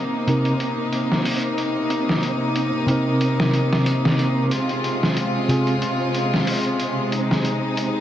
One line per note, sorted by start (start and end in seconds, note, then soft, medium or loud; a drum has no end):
0.00 8.00 C3 medium
0.00 4.48 A#3 medium
0.00 8.00 C4 medium
0.00 4.48 D#4 medium
0.00 8.00 C5 medium
0.27 0.51 C3 medium
0.27 0.51 C4 medium
0.27 0.52 D#4 medium
0.27 0.52 A#4 medium
0.27 closed hi-hat medium
0.45 closed hi-hat soft
0.60 closed hi-hat medium
0.93 closed hi-hat medium
1.12 snare soft
1.25 open hi-hat medium
1.43 closed hi-hat soft
1.58 closed hi-hat medium
1.90 closed hi-hat medium
2.09 snare soft
2.23 closed hi-hat medium
2.56 closed hi-hat medium
2.86 4.49 C3 medium
2.86 4.49 C4 medium
2.86 4.50 D#4 medium
2.86 closed hi-hat medium
2.91 4.51 A#4 medium
3.21 closed hi-hat medium
3.40 snare medium
3.53 closed hi-hat medium
3.73 snare soft
3.86 closed hi-hat medium
4.05 snare soft
4.19 closed hi-hat medium
4.51 8.00 G#3 medium
4.51 7.10 F4 medium
4.51 closed hi-hat medium
4.69 closed hi-hat soft
4.84 closed hi-hat medium
5.03 snare soft
5.17 closed hi-hat medium
5.48 5.72 C3 medium
5.48 5.73 C4 medium
5.48 5.73 F4 medium
5.48 5.74 G#4 medium
5.48 closed hi-hat medium
5.67 closed hi-hat soft
5.82 closed hi-hat medium
6.15 closed hi-hat medium
6.34 snare soft
6.47 open hi-hat medium
6.65 closed hi-hat soft
6.80 closed hi-hat medium
7.12 8.00 D#4 medium
7.12 closed hi-hat medium
7.31 snare soft
7.45 closed hi-hat medium
7.77 closed hi-hat medium